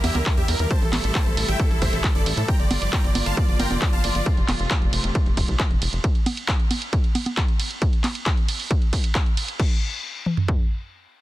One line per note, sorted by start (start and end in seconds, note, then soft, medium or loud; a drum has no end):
0.00 0.11 E2 medium
0.00 0.69 D3 medium
0.00 2.45 E3 medium
0.00 6.00 G3 medium
0.00 0.69 A#3 medium
0.00 0.69 E4 medium
0.00 0.13 G4 medium
0.00 0.13 E5 medium
0.00 open hi-hat loud
0.00 ride medium
0.00 high conga medium
0.15 0.22 D2 medium
0.15 0.24 A#4 medium
0.15 closed hi-hat soft
0.15 high conga medium
0.26 0.35 A#4 medium
0.26 kick loud
0.26 clap loud
0.26 closed hi-hat medium
0.26 ride medium
0.37 0.44 E2 medium
0.37 0.46 G4 medium
0.37 0.46 E5 medium
0.37 closed hi-hat soft
0.48 0.55 E2 loud
0.48 0.57 A#4 medium
0.48 open hi-hat loud
0.48 ride medium
0.59 0.66 E2 medium
0.59 0.68 A#4 medium
0.59 closed hi-hat medium
0.71 2.47 C3 medium
0.71 2.47 A3 medium
0.71 2.47 E4 medium
0.71 0.80 C5 medium
0.71 0.80 A5 loud
0.71 kick loud
0.71 closed hi-hat medium
0.71 ride medium
0.82 0.89 A1 medium
0.82 0.91 A4 medium
0.82 closed hi-hat soft
0.93 1.00 A1 loud
0.93 1.02 A4 medium
0.93 clap medium
0.93 open hi-hat loud
0.93 ride medium
0.93 high conga medium
1.04 1.11 A1 medium
1.04 1.13 A4 medium
1.04 closed hi-hat medium
1.15 1.24 C5 medium
1.15 1.24 A5 loud
1.15 kick loud
1.15 clap loud
1.15 closed hi-hat medium
1.15 ride medium
1.26 1.33 A1 medium
1.26 1.35 A4 medium
1.26 closed hi-hat soft
1.37 1.44 A1 medium
1.37 1.46 A4 medium
1.37 open hi-hat loud
1.37 ride medium
1.48 1.55 A1 medium
1.48 1.57 E5 medium
1.48 1.57 G5 loud
1.48 closed hi-hat medium
1.60 1.68 A4 medium
1.60 kick loud
1.60 closed hi-hat soft
1.60 ride medium
1.71 1.77 A1 medium
1.71 1.80 A4 medium
1.71 closed hi-hat soft
1.82 1.89 A1 loud
1.82 1.91 C5 medium
1.82 1.91 E5 loud
1.82 kick medium
1.82 open hi-hat loud
1.82 ride medium
1.93 2.00 A1 medium
1.93 2.02 A4 medium
1.93 closed hi-hat soft
2.04 2.13 A4 medium
2.04 kick loud
2.04 clap loud
2.04 closed hi-hat medium
2.04 ride medium
2.15 2.22 G1 medium
2.15 2.24 A4 medium
2.15 2.24 D5 loud
2.15 closed hi-hat soft
2.26 2.33 A1 loud
2.26 2.35 A4 medium
2.26 open hi-hat loud
2.26 ride medium
2.37 2.44 A2 loud
2.37 2.46 A4 medium
2.37 closed hi-hat medium
2.48 4.24 D3 medium
2.48 6.00 F3 medium
2.48 4.24 A#3 medium
2.48 6.00 F4 medium
2.48 2.57 G5 medium
2.48 2.57 A#5 loud
2.48 kick loud
2.48 closed hi-hat medium
2.48 ride medium
2.59 2.66 G1 medium
2.59 2.68 D5 medium
2.59 closed hi-hat soft
2.71 2.77 G1 loud
2.71 2.80 D5 medium
2.71 open hi-hat loud
2.71 ride medium
2.71 high conga medium
2.82 2.89 G1 medium
2.82 2.91 D5 medium
2.82 closed hi-hat medium
2.93 3.02 G5 medium
2.93 3.02 A#5 loud
2.93 kick loud
2.93 clap loud
2.93 closed hi-hat medium
2.93 ride medium
3.04 3.11 G1 medium
3.04 3.13 D5 medium
3.04 closed hi-hat soft
3.15 3.22 G1 loud
3.15 3.24 D5 medium
3.15 open hi-hat loud
3.15 ride medium
3.15 high conga medium
3.26 3.33 G1 loud
3.26 3.35 F5 medium
3.26 3.35 A5 medium
3.26 closed hi-hat soft
3.37 3.46 D5 medium
3.37 kick loud
3.37 closed hi-hat soft
3.37 ride medium
3.48 3.55 G1 medium
3.48 3.57 D5 medium
3.48 closed hi-hat soft
3.60 3.66 G1 loud
3.60 3.69 A#4 medium
3.60 3.69 G5 loud
3.60 open hi-hat loud
3.60 ride medium
3.60 high conga medium
3.71 3.77 F1 medium
3.71 3.80 D5 medium
3.71 closed hi-hat soft
3.71 high conga medium
3.82 3.91 D5 medium
3.82 kick loud
3.82 clap loud
3.82 closed hi-hat medium
3.82 ride medium
3.93 4.00 G1 medium
3.93 4.02 F5 medium
3.93 4.02 A5 loud
3.93 closed hi-hat soft
4.04 4.11 G1 loud
4.04 4.13 D5 medium
4.04 open hi-hat loud
4.04 ride medium
4.15 4.22 G1 medium
4.15 4.24 D5 medium
4.15 closed hi-hat medium
4.26 6.02 C3 medium
4.26 6.02 A3 medium
4.26 kick loud
4.26 closed hi-hat medium
4.26 ride medium
4.37 4.44 F1 medium
4.37 closed hi-hat soft
4.48 4.55 F1 loud
4.48 clap medium
4.48 open hi-hat loud
4.48 ride medium
4.48 high conga medium
4.60 4.66 F1 medium
4.60 closed hi-hat medium
4.71 kick loud
4.71 clap loud
4.71 closed hi-hat medium
4.71 ride medium
4.82 4.89 F1 medium
4.82 closed hi-hat soft
4.93 5.00 F1 medium
4.93 open hi-hat loud
4.93 ride medium
5.04 5.11 F1 loud
5.04 closed hi-hat medium
5.15 kick loud
5.15 closed hi-hat medium
5.15 ride medium
5.26 5.33 F1 medium
5.26 closed hi-hat soft
5.37 5.44 F1 loud
5.37 kick medium
5.37 open hi-hat loud
5.37 ride medium
5.48 5.55 C2 medium
5.48 closed hi-hat medium
5.60 kick loud
5.60 clap loud
5.60 closed hi-hat medium
5.60 ride medium
5.71 5.77 F1 medium
5.71 closed hi-hat soft
5.82 5.88 F1 loud
5.82 open hi-hat loud
5.82 ride medium
5.93 6.00 F1 medium
5.93 closed hi-hat medium
6.04 kick loud
6.04 closed hi-hat medium
6.04 ride medium
6.15 closed hi-hat soft
6.26 open hi-hat loud
6.26 ride medium
6.26 high conga medium
6.37 closed hi-hat medium
6.48 kick loud
6.48 clap loud
6.48 closed hi-hat medium
6.48 ride medium
6.60 closed hi-hat soft
6.71 open hi-hat loud
6.71 ride medium
6.71 high conga medium
6.82 closed hi-hat medium
6.93 kick loud
6.93 closed hi-hat medium
6.93 ride medium
7.04 closed hi-hat soft
7.15 open hi-hat loud
7.15 ride medium
7.15 high conga medium
7.26 closed hi-hat medium
7.26 high conga medium
7.37 kick loud
7.37 clap loud
7.37 closed hi-hat medium
7.37 ride medium
7.48 closed hi-hat soft
7.60 open hi-hat medium
7.60 ride medium
7.71 closed hi-hat medium
7.82 kick loud
7.82 closed hi-hat medium
7.82 ride medium
7.93 closed hi-hat soft
8.04 clap medium
8.04 open hi-hat loud
8.04 ride medium
8.04 high conga medium
8.15 closed hi-hat medium
8.26 kick loud
8.26 clap loud
8.26 closed hi-hat medium
8.26 ride medium
8.37 closed hi-hat soft
8.48 open hi-hat loud
8.48 ride medium
8.60 open hi-hat medium
8.71 kick loud
8.71 closed hi-hat medium
8.71 ride medium
8.82 closed hi-hat soft
8.93 kick medium
8.93 open hi-hat loud
8.93 ride medium
9.04 closed hi-hat medium
9.15 kick loud
9.15 clap loud
9.15 closed hi-hat medium
9.15 ride medium
9.26 closed hi-hat soft
9.37 open hi-hat loud
9.37 ride medium
9.48 closed hi-hat medium
9.60 kick loud
9.60 crash medium
10.26 mid tom medium
10.37 floor tom medium
10.48 kick loud